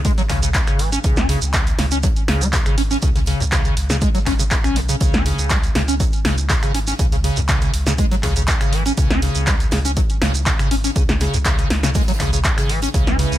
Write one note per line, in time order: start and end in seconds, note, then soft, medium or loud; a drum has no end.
0.00 0.12 C#2 medium
0.05 0.12 G#3 loud
0.05 kick loud
0.05 closed hi-hat medium
0.05 shekere medium
0.18 0.22 F#3 loud
0.18 snare soft
0.18 closed hi-hat medium
0.18 shekere soft
0.29 0.61 C#2 medium
0.29 0.40 C#3 medium
0.29 finger snap medium
0.29 kick medium
0.29 snare soft
0.29 clap soft
0.29 closed hi-hat medium
0.29 open hi-hat loud
0.43 0.49 C#3 medium
0.43 closed hi-hat soft
0.43 shekere medium
0.54 kick loud
0.54 snare loud
0.54 clap loud
0.54 closed hi-hat medium
0.54 shekere medium
0.67 0.98 G#1 loud
0.67 0.81 C#3 medium
0.67 finger snap medium
0.67 closed hi-hat medium
0.67 shekere soft
0.79 0.90 E3 medium
0.79 closed hi-hat medium
0.79 open hi-hat loud
0.92 0.99 C#4 medium
0.92 closed hi-hat soft
0.92 shekere medium
1.04 1.36 C#2 loud
1.04 1.19 C#3 medium
1.04 kick loud
1.04 closed hi-hat medium
1.04 shekere medium
1.17 1.27 C#4 loud
1.17 snare medium
1.17 closed hi-hat medium
1.17 shekere soft
1.29 1.40 C#3 medium
1.29 closed hi-hat medium
1.29 open hi-hat loud
1.42 1.73 C#2 medium
1.42 closed hi-hat soft
1.42 shekere medium
1.53 kick loud
1.53 snare loud
1.53 clap loud
1.53 closed hi-hat medium
1.53 shekere medium
1.67 closed hi-hat soft
1.67 closed hi-hat medium
1.67 shekere soft
1.78 2.10 C#2 medium
1.78 1.86 C#3 medium
1.78 snare medium
1.78 closed hi-hat medium
1.78 open hi-hat loud
1.91 1.98 C#4 medium
1.91 closed hi-hat soft
1.91 shekere medium
2.03 2.08 F#3 medium
2.03 kick loud
2.03 closed hi-hat medium
2.03 closed hi-hat loud
2.03 shekere medium
2.16 closed hi-hat medium
2.16 shekere soft
2.28 2.60 C#2 medium
2.28 2.43 C#3 medium
2.28 finger snap medium
2.28 snare medium
2.28 closed hi-hat medium
2.28 open hi-hat loud
2.41 2.48 G#3 medium
2.41 closed hi-hat soft
2.41 shekere medium
2.53 2.57 C#3 medium
2.53 kick loud
2.53 snare loud
2.53 clap loud
2.53 closed hi-hat medium
2.53 shekere medium
2.66 2.97 G#1 loud
2.66 2.76 C#3 medium
2.66 finger snap medium
2.66 closed hi-hat medium
2.66 shekere soft
2.78 2.82 C#4 medium
2.78 closed hi-hat medium
2.78 open hi-hat loud
2.91 2.97 C#4 medium
2.91 snare medium
2.91 closed hi-hat soft
2.91 shekere medium
3.02 3.34 C#2 loud
3.02 3.10 C#3 medium
3.02 kick loud
3.02 closed hi-hat medium
3.02 shekere medium
3.16 3.19 C#3 medium
3.16 snare soft
3.16 closed hi-hat medium
3.16 shekere soft
3.26 3.42 C#3 medium
3.26 snare medium
3.26 closed hi-hat medium
3.26 open hi-hat loud
3.40 3.71 C#2 medium
3.40 3.44 C#2 medium
3.40 closed hi-hat soft
3.40 shekere medium
3.52 3.63 C#3 medium
3.52 kick loud
3.52 snare loud
3.52 clap loud
3.52 closed hi-hat medium
3.52 shekere medium
3.65 3.75 C#3 medium
3.65 closed hi-hat soft
3.65 shekere soft
3.77 4.08 C#2 medium
3.77 closed hi-hat medium
3.77 open hi-hat loud
3.90 3.96 C#3 loud
3.90 snare medium
3.90 closed hi-hat soft
3.90 shekere medium
4.01 4.09 G#3 loud
4.01 kick loud
4.01 closed hi-hat medium
4.01 shekere medium
4.14 4.19 F#3 loud
4.14 snare soft
4.14 closed hi-hat medium
4.14 shekere soft
4.26 4.58 G#1 medium
4.26 4.34 C#4 medium
4.26 finger snap medium
4.26 kick medium
4.26 snare soft
4.26 clap soft
4.26 closed hi-hat medium
4.26 open hi-hat loud
4.39 4.43 C#3 medium
4.39 closed hi-hat soft
4.39 shekere medium
4.51 kick loud
4.51 snare loud
4.51 clap loud
4.51 closed hi-hat medium
4.51 shekere medium
4.64 4.95 B1 medium
4.64 4.78 C#4 medium
4.64 finger snap medium
4.64 closed hi-hat medium
4.64 shekere soft
4.76 4.80 B2 medium
4.76 closed hi-hat medium
4.76 open hi-hat loud
4.89 4.96 C#3 loud
4.89 closed hi-hat soft
4.89 shekere medium
5.00 5.32 C#2 loud
5.00 5.15 C#3 medium
5.00 kick loud
5.00 closed hi-hat medium
5.00 shekere medium
5.13 5.24 C#4 loud
5.13 snare medium
5.13 closed hi-hat medium
5.13 shekere soft
5.25 5.52 C#3 medium
5.25 closed hi-hat medium
5.25 open hi-hat loud
5.39 5.69 C#2 medium
5.39 closed hi-hat soft
5.39 shekere medium
5.50 5.58 G#3 medium
5.50 kick loud
5.50 snare loud
5.50 clap loud
5.50 closed hi-hat medium
5.50 shekere medium
5.63 closed hi-hat soft
5.63 shekere soft
5.75 6.07 C#2 medium
5.75 5.82 C#3 medium
5.75 snare medium
5.75 closed hi-hat medium
5.75 open hi-hat loud
5.88 5.95 C#4 medium
5.88 closed hi-hat soft
5.88 shekere medium
6.00 6.04 F#3 medium
6.00 kick loud
6.00 closed hi-hat medium
6.00 shekere medium
6.13 closed hi-hat soft
6.13 shekere soft
6.25 6.56 C#2 medium
6.25 6.36 C#3 medium
6.25 finger snap medium
6.25 snare medium
6.25 closed hi-hat medium
6.25 open hi-hat loud
6.38 closed hi-hat soft
6.38 shekere medium
6.49 6.54 C#3 medium
6.49 kick loud
6.49 snare loud
6.49 clap loud
6.49 closed hi-hat medium
6.49 shekere medium
6.63 6.93 G#1 loud
6.63 6.72 C#3 medium
6.63 finger snap medium
6.63 closed hi-hat medium
6.63 shekere soft
6.74 6.79 C#4 medium
6.74 closed hi-hat medium
6.74 open hi-hat loud
6.87 6.94 C#4 medium
6.87 snare medium
6.87 closed hi-hat soft
6.87 shekere medium
6.99 7.31 C#2 loud
6.99 7.06 C#3 medium
6.99 kick loud
6.99 closed hi-hat medium
6.99 shekere medium
7.12 7.16 C#3 medium
7.12 snare soft
7.12 closed hi-hat medium
7.12 shekere soft
7.24 7.38 C#3 medium
7.24 snare medium
7.24 closed hi-hat medium
7.24 open hi-hat loud
7.36 7.68 C#2 medium
7.36 7.41 C#2 medium
7.36 closed hi-hat soft
7.36 shekere medium
7.48 7.60 C#3 medium
7.48 kick loud
7.48 snare loud
7.48 clap loud
7.48 closed hi-hat medium
7.48 shekere medium
7.61 7.72 C#3 medium
7.61 closed hi-hat medium
7.61 shekere soft
7.74 8.05 C#2 medium
7.74 closed hi-hat medium
7.74 open hi-hat loud
7.86 7.93 C#3 loud
7.86 snare medium
7.86 closed hi-hat soft
7.86 shekere medium
7.98 8.06 G#3 loud
7.98 kick loud
7.98 closed hi-hat medium
7.98 shekere medium
8.11 8.15 F#3 loud
8.11 snare medium
8.11 closed hi-hat medium
8.11 shekere soft
8.23 8.55 C#2 medium
8.23 8.34 C#3 medium
8.23 finger snap medium
8.23 kick medium
8.23 snare soft
8.23 clap soft
8.23 closed hi-hat medium
8.23 open hi-hat loud
8.36 8.43 C#3 medium
8.36 closed hi-hat soft
8.36 shekere medium
8.47 kick loud
8.47 snare loud
8.47 clap loud
8.47 closed hi-hat medium
8.47 shekere medium
8.61 8.92 G#1 loud
8.61 8.74 C#3 medium
8.61 finger snap medium
8.61 closed hi-hat medium
8.61 shekere soft
8.73 8.84 E3 medium
8.73 closed hi-hat medium
8.73 open hi-hat loud
8.86 8.92 C#4 medium
8.86 closed hi-hat soft
8.86 shekere medium
8.97 9.29 C#2 loud
8.97 9.12 C#3 medium
8.97 kick loud
8.97 closed hi-hat medium
8.97 shekere medium
9.11 9.20 C#4 loud
9.11 snare medium
9.11 closed hi-hat medium
9.11 shekere soft
9.22 9.49 C#3 medium
9.22 closed hi-hat medium
9.22 open hi-hat loud
9.35 9.66 C#2 medium
9.35 closed hi-hat soft
9.35 shekere medium
9.47 9.54 G#3 medium
9.47 kick loud
9.47 snare loud
9.47 clap loud
9.47 closed hi-hat medium
9.47 shekere medium
9.60 closed hi-hat medium
9.60 closed hi-hat soft
9.60 shekere soft
9.71 10.03 C#2 medium
9.71 9.79 C#3 medium
9.71 snare medium
9.71 closed hi-hat medium
9.71 open hi-hat loud
9.85 9.92 C#4 medium
9.85 closed hi-hat soft
9.85 shekere medium
9.97 10.01 F#3 medium
9.97 kick loud
9.97 closed hi-hat medium
9.97 shekere medium
10.10 closed hi-hat medium
10.10 shekere soft
10.21 10.53 C#2 medium
10.21 10.32 C#3 medium
10.21 finger snap medium
10.21 snare medium
10.21 snare loud
10.21 closed hi-hat medium
10.21 open hi-hat loud
10.34 closed hi-hat soft
10.34 shekere medium
10.46 10.51 C#3 medium
10.46 kick loud
10.46 snare loud
10.46 clap loud
10.46 closed hi-hat medium
10.46 shekere medium
10.59 10.90 G#1 loud
10.59 10.69 C#3 medium
10.59 finger snap medium
10.59 closed hi-hat medium
10.59 shekere soft
10.71 10.75 C#4 medium
10.71 closed hi-hat medium
10.71 open hi-hat loud
10.84 10.91 C#4 medium
10.84 snare medium
10.84 closed hi-hat soft
10.84 shekere medium
10.96 11.27 C#2 loud
10.96 11.03 C#3 medium
10.96 kick loud
10.96 closed hi-hat medium
10.96 shekere medium
11.08 11.13 C#3 medium
11.08 snare soft
11.08 snare medium
11.08 closed hi-hat medium
11.08 shekere soft
11.20 11.35 C#3 medium
11.20 snare medium
11.20 snare soft
11.20 closed hi-hat medium
11.20 open hi-hat loud
11.34 11.64 C#2 medium
11.34 11.38 C#2 medium
11.34 closed hi-hat soft
11.34 shekere medium
11.44 11.56 C#3 medium
11.44 kick loud
11.44 snare loud
11.44 clap loud
11.44 closed hi-hat medium
11.44 shekere medium
11.58 11.68 C#3 medium
11.58 closed hi-hat medium
11.58 shekere soft
11.70 12.02 C#2 medium
11.70 snare medium
11.70 closed hi-hat medium
11.70 open hi-hat loud
11.83 11.90 C#3 loud
11.83 snare medium
11.83 closed hi-hat soft
11.83 shekere medium
11.94 12.02 G#3 loud
11.94 kick loud
11.94 snare medium
11.94 closed hi-hat medium
11.94 shekere medium
12.01 snare loud
12.01 closed hi-hat medium
12.07 12.12 F#3 loud
12.07 snare medium
12.07 closed hi-hat medium
12.07 shekere soft
12.14 snare medium
12.14 closed hi-hat medium
12.20 12.51 C#2 medium
12.20 12.31 C#3 medium
12.20 finger snap medium
12.20 kick medium
12.20 snare loud
12.20 clap soft
12.20 closed hi-hat medium
12.20 open hi-hat loud
12.33 12.39 C#3 medium
12.33 closed hi-hat soft
12.33 shekere medium
12.44 kick loud
12.44 clap loud
12.44 closed hi-hat medium
12.44 shekere medium
12.57 12.88 G#1 loud
12.57 12.71 C#3 medium
12.57 finger snap medium
12.57 snare loud
12.57 closed hi-hat medium
12.57 shekere soft
12.69 12.80 E3 medium
12.69 open hi-hat loud
12.82 12.89 C#4 medium
12.82 closed hi-hat medium
12.82 closed hi-hat soft
12.82 shekere medium
12.94 13.26 C#2 loud
12.94 13.09 C#3 medium
12.94 13.38 C#3 medium
12.94 13.38 G#3 medium
12.94 13.38 E4 medium
12.94 13.38 B4 loud
12.94 kick loud
12.94 closed hi-hat medium
12.94 shekere medium
13.07 13.17 C#4 loud
13.07 snare medium
13.07 closed hi-hat medium
13.07 shekere soft
13.19 13.38 C#3 medium
13.19 closed hi-hat medium
13.19 open hi-hat loud
13.32 13.38 C#2 medium
13.32 closed hi-hat soft
13.32 shekere medium